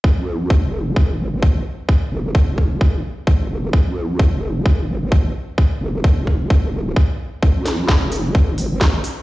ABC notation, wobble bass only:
X:1
M:4/4
L:1/16
Q:"Swing 16ths" 1/4=130
K:Fm
V:1 name="Wobble bass" clef=bass
F,,, F,,4 F,,,3 F,,,2 A,,, A,,,3 z2 | z2 F,,,3 F,,,3 F,,,2 z2 A,,,2 F,,,2 | F,,, F,,4 F,,,3 F,,,2 A,,, A,,,3 z2 | z2 F,,,3 F,,,3 F,,,4 z4 |
F,,, F,,4 F,,,3 F,,,2 A,,, A,,,3 z2 |]